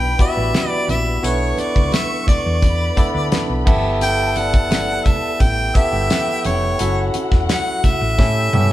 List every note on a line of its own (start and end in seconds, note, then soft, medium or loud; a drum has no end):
0.00 0.13 B1 loud
0.00 0.19 B3 medium
0.00 1.23 D4 medium
0.00 0.19 E4 medium
0.00 0.21 G4 medium
0.00 1.20 B4 medium
0.00 0.21 D5 medium
0.00 0.19 G5 loud
0.00 1.20 B5 loud
0.19 1.10 B3 medium
0.19 1.11 E4 medium
0.19 1.11 F#4 medium
0.19 1.11 G4 medium
0.19 1.13 B4 medium
0.19 1.11 D5 medium
0.19 0.69 E5 loud
0.19 kick loud
0.19 closed hi-hat medium
0.37 0.51 A1 loud
0.54 snare loud
0.54 closed hi-hat medium
0.54 high conga medium
0.69 0.85 D5 loud
0.88 1.17 A#1 medium
0.88 1.27 E5 loud
0.88 closed hi-hat medium
0.88 high conga medium
1.23 1.52 B1 loud
1.23 2.45 B3 medium
1.23 2.45 D4 medium
1.23 2.46 E4 medium
1.23 2.46 A4 medium
1.23 2.60 B4 medium
1.23 2.46 B4 medium
1.23 1.61 C#5 medium
1.23 2.61 C#6 loud
1.23 closed hi-hat loud
1.23 muted conga soft
1.58 1.92 D5 medium
1.58 muted fingered electric bass stroke soft
1.58 closed hi-hat medium
1.58 muted conga medium
1.76 1.90 C#2 medium
1.76 kick loud
1.92 2.25 E5 loud
1.92 snare loud
1.92 closed hi-hat loud
1.92 high conga medium
2.27 3.63 D5 medium
2.27 muted fingered electric bass stroke soft
2.27 kick medium
2.27 closed hi-hat medium
2.27 low conga medium
2.46 2.89 E2 medium
2.62 3.66 B4 medium
2.62 3.65 B5 loud
2.62 kick medium
2.62 closed hi-hat medium
2.62 muted conga medium
2.97 3.64 B3 medium
2.97 3.67 D4 medium
2.97 3.65 E4 medium
2.97 3.66 A4 medium
2.97 3.68 D5 medium
2.97 muted fingered electric bass stroke medium
2.97 kick medium
2.97 closed hi-hat medium
2.97 low conga medium
3.15 3.29 D2 loud
3.32 snare loud
3.32 closed hi-hat medium
3.32 high conga medium
3.50 3.64 B1 loud
3.65 4.88 B3 medium
3.65 4.89 E4 medium
3.65 4.89 G4 medium
3.65 4.89 A4 loud
3.65 5.38 A4 medium
3.65 4.90 E5 loud
3.65 5.38 A5 loud
3.65 kick loud
3.65 crash medium
3.65 high conga medium
4.01 4.38 G5 loud
4.01 closed hi-hat loud
4.01 muted conga soft
4.36 5.30 D5 medium
4.36 5.07 F#5 loud
4.36 closed hi-hat medium
4.36 muted conga medium
4.54 kick medium
4.71 snare loud
4.71 closed hi-hat loud
4.71 high conga medium
5.05 5.43 E5 loud
5.05 kick loud
5.05 closed hi-hat medium
5.05 low conga medium
5.40 5.70 A1 loud
5.40 6.77 G4 medium
5.40 6.77 G5 loud
5.40 5.77 G5 loud
5.40 kick medium
5.40 closed hi-hat medium
5.40 muted conga medium
5.75 6.67 B3 medium
5.75 6.67 E4 medium
5.75 6.67 G4 medium
5.75 6.68 A4 medium
5.75 6.45 E5 loud
5.75 6.68 E5 medium
5.75 kick loud
5.75 closed hi-hat medium
5.75 muted conga soft
5.93 6.07 G1 loud
6.10 snare loud
6.10 closed hi-hat loud
6.10 high conga medium
6.44 6.74 F1 medium
6.44 7.11 C#5 loud
6.44 closed hi-hat medium
6.44 high conga medium
6.79 7.09 F#1 loud
6.79 8.02 C#4 medium
6.79 8.02 E4 medium
6.79 8.16 F#4 medium
6.79 8.02 F#4 medium
6.79 8.03 A4 medium
6.79 8.03 E5 medium
6.79 8.16 F#5 loud
6.79 closed hi-hat loud
6.79 muted conga soft
7.14 muted fingered electric bass stroke soft
7.14 closed hi-hat medium
7.14 muted conga medium
7.32 7.46 E1 medium
7.32 kick medium
7.32 snare soft
7.49 7.88 F#5 loud
7.49 snare loud
7.49 closed hi-hat loud
7.49 high conga medium
7.84 8.73 E5 loud
7.84 muted fingered electric bass stroke soft
7.84 kick medium
7.84 closed hi-hat medium
7.84 low conga medium
8.01 8.16 A1 medium
8.18 8.48 A2 loud
8.18 8.49 C#4 medium
8.18 8.49 E4 medium
8.18 8.50 G4 medium
8.18 8.73 G4 medium
8.18 8.50 A4 medium
8.18 8.50 E5 medium
8.18 8.73 G5 loud
8.18 kick medium
8.18 snare medium
8.18 muted conga medium
8.53 8.73 G2 medium
8.53 8.60 B3 medium
8.53 8.73 E4 medium
8.53 8.73 G4 medium
8.53 8.73 A4 medium
8.53 8.73 E5 medium
8.53 high tom medium
8.53 muted conga soft
8.53 low conga medium
8.59 8.73 C#4 medium